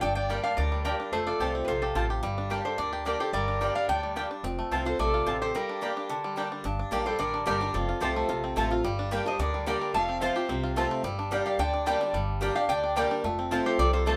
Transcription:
0.01 G1 G2 D4 D5 G5
0.15 D4 D5 G5
0.29 G3 A#3 D4 G4 D5 G5
0.43 D4 D5 F5
0.56 D2 A2 D4 A#4 D5
0.72 G3
0.85 G2 A#3 D4 G4 A#4 D5 G5
1.00 D4
1.12 F1 F2 A3 A4 C5
1.26 F4 A4 D5
1.40 C2 F3 A3 C4 F4 G4 C5 A5
1.55 C4
1.65 A#1 C3 F4 G4 A4 B4 C5
1.82 F4 G4 A4
1.95 A1 F2 C4 F4 C5 A5
2.10 G4
2.23 G1 G2 G3
2.38 D4
2.50 G3 A#3 D4 G4 D5 G5
2.65 D4 A4 C5
2.78 D2 D3 D4 A#4 D5
2.93 G4
3.05 G3 A#3 D4 G4 A#4 D5 G5
3.20 D4 G4 A4 C5
3.33 G1 G2 G3 A#4 D5
3.48 D4
3.61 G3 A#3 D4 G4 D5 G5
3.75 D4 D5 F5
3.88 D2 A2 D4 D5 G5
4.03 G3
4.16 G2 A#3 D4 G4 D5 G5
4.31 D4
4.43 F1 F2 C4
4.59 A3
4.71 C2 F3 A3 C4 F4 C5 A5
4.85 C4 F4 A4 C5
4.99 A#1 C3 A3 A4 D5
5.14 F4
5.26 A1 F2 C4 F4 C5 A5
5.42 G4 A4 C5
5.55 G2 G3 G4 A#4
5.69 D4
5.81 G3 A#3 D4 G4 D5 G5
5.97 D4
6.09 D3 D4
6.24 G3
6.36 G3 A#3 D4 G4 D5 G5
6.52 D4
6.64 G1 G2 D4
6.79 D4
6.91 A#1 G3 A#3 D4 G4 D5 G5
7.05 G3 D4 G4 A4 C5
7.19 A1 D3 D4 A#4 D5
7.34 D4
7.46 G1 G3 A#3 D4 G4 A#4 D5 G5
7.60 D4 G4
7.74 F1 F2 C4 F4 A4
7.89 F4
8.00 C2 F3 A3 C4 F4 G4 A4 C5 A5
8.16 A3
8.29 A#1 C3 F4
8.44 C4
8.56 A1 F3 A3 C4 F4 C5 A5
8.70 C4 F4
8.84 G1 G2 G3
8.99 D4
9.11 G3 A#3 D4 G4 D5 G5
9.26 D4 G4 C5 D#5
9.39 D2 D3 D4 A#4 D5
9.54 G3
9.66 G3 A#3 D4 G4 A#4 D5 G5
9.82 G3
9.94 F1 F2 A3 F5 A5
10.09 C4
10.21 F3 A3 C4 F4 C5 F5 A5
10.36 C4 F4 G4
10.49 C2 C3 C4
10.63 F4
10.76 F3 A3 C4 F4 C5 A5
10.91 C4
11.03 G1 G2 G3
11.19 D4
11.31 G3 A#3 D4 G4 D5 G5
11.46 G4 D5 F5
11.58 D2 D3 D4 D5 G5
11.74 D4
11.86 G3 A#3 D4 G4 D5 G5
12.01 D4 G4
12.13 G1 G2 G3
12.41 G3 A#3 D4 G4 D5 G5
12.55 D4 G4 D5 F5
12.68 D2 D3 D4 D5 G5
12.84 D4
12.96 G3 A#3 D4 G4 D5 G5
13.11 D4
13.24 F1 F2 A3
13.39 C4
13.51 F3 A3 C4 F4 C5 A5
13.66 G4 A4 C5
13.78 C2 C3 C4 A4 D5
13.93 F4 A4 C5
14.06 F2 A3 C4 F4 A4 C5 A5

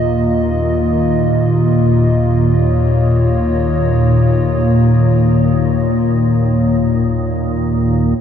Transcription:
Already playing: D#2 A#2 A#3 F4 D#5
2.42 C#5

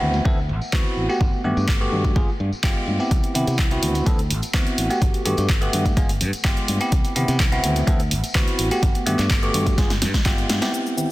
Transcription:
Already playing: B3 C4 E4 F#4
0.01 D2, low conga
0.14 tambourine, high conga
0.25 D2 B3 C4 E4 A4, kick, tambourine
0.38 tambourine
0.49 A1
0.62 muted fingered electric bass stroke, tambourine
0.73 D2 B3 C4 E4 F#4, kick, clap
0.86 tambourine
0.97 A1
1.09 A3 B3 F#4 G4, tambourine
1.21 G1, kick, tambourine
1.33 muted fingered electric bass stroke, tambourine
1.44 G2 A3 B3 F#4 G4, low conga
1.57 G2, tambourine
1.68 G1, kick, clap
1.80 A3 B3 F#4 G4, tambourine
1.92 G2, low conga
2.04 kick, tambourine, high conga
2.15 G1 G#3 B3 F4 G#4, kick, tambourine
2.28 muted fingered electric bass stroke, tambourine
2.40 G2
2.52 muted fingered electric bass stroke, tambourine
2.63 G1 G#3 B3 F4 G4, kick, clap
2.76 tambourine
2.88 G2, high conga
2.99 B3 C4 E4 G4, tambourine
3.11 C2, kick, closed hi-hat
3.23 closed hi-hat, tambourine
3.34 C3 B3 C4 E4 G4, open hi-hat, low conga
3.47 C3, closed hi-hat, tambourine
3.59 C2, kick, clap, closed hi-hat
3.71 B3 C4 E4 F#4, closed hi-hat, tambourine
3.83 D2, open hi-hat, low conga
3.95 closed hi-hat, tambourine, high conga
4.06 D2 B3 C4 E4 A4, kick, closed hi-hat, tambourine
4.19 closed hi-hat, tambourine
4.30 A1, open hi-hat
4.42 muted fingered electric bass stroke, closed hi-hat, tambourine
4.54 D2 B3 C4 E4 F#4, kick, clap, closed hi-hat
4.67 closed hi-hat, tambourine
4.78 A1, open hi-hat
4.90 A3 B3 F#4 G4, closed hi-hat, tambourine
5.02 G1, kick, closed hi-hat
5.14 muted fingered electric bass stroke, closed hi-hat, tambourine
5.25 G2 A3 B3 F#4 G4, open hi-hat, low conga
5.37 G2, closed hi-hat, tambourine
5.49 G1, kick, clap, closed hi-hat
5.61 A3 B3 F#4 G4, closed hi-hat, tambourine
5.73 G2, open hi-hat, low conga
5.85 kick, closed hi-hat, tambourine, high conga
5.97 G1 G#3 B3 F4 G#4, kick, closed hi-hat, tambourine
6.09 open hi-hat, tambourine
6.21 G2, open hi-hat
6.33 muted fingered electric bass stroke, closed hi-hat, tambourine
6.44 G1 G#3 B3 F4 G4, kick, clap, closed hi-hat
6.57 closed hi-hat, tambourine
6.68 G2, open hi-hat, high conga
6.80 B3 C4 E4 G4, closed hi-hat, tambourine
6.92 C2, kick, closed hi-hat, tambourine
7.05 closed hi-hat, tambourine
7.15 C3 B3 C4 E4 G4, open hi-hat, low conga
7.28 C3, closed hi-hat, tambourine
7.40 C2, kick, clap, closed hi-hat
7.52 B3 C4 E4 F#4, closed hi-hat, tambourine
7.64 D2, open hi-hat, low conga
7.76 closed hi-hat, tambourine, high conga
7.87 D2 B3 C4 E4 A4, kick, closed hi-hat
7.99 closed hi-hat, tambourine
8.11 A1, open hi-hat
8.24 muted fingered electric bass stroke, closed hi-hat, tambourine
8.35 D2 B3 C4 E4 F#4, kick, clap, closed hi-hat
8.48 closed hi-hat, tambourine
8.59 A1, open hi-hat
8.71 A3 B3 F#4 G4, closed hi-hat, tambourine
8.83 G1, kick, closed hi-hat
8.95 muted fingered electric bass stroke, closed hi-hat, tambourine
9.06 G2 A3 B3 F#4 G4, open hi-hat, low conga
9.18 G2, clap, closed hi-hat, tambourine
9.30 G1, kick, clap, closed hi-hat
9.42 A3 B3 F#4 G4, closed hi-hat, tambourine
9.54 G2, open hi-hat, low conga
9.66 kick, closed hi-hat, tambourine, high conga
9.77 G1 G#3 B3 F4 G#4, kick, snare, closed hi-hat, tambourine
9.90 snare, open hi-hat, tambourine
10.02 G2, snare, open hi-hat
10.14 muted fingered electric bass stroke, kick, snare, closed hi-hat, tambourine
10.25 G1 G#3 B3 F4 G4, kick, snare, clap, closed hi-hat
10.38 closed hi-hat, tambourine
10.49 G2, snare, open hi-hat, high conga
10.61 B3 C4 E4 G4, snare, closed hi-hat, tambourine
10.73 tambourine, shaker
10.85 tambourine, shaker
10.97 B3 C4 E4 G4, low conga, shaker

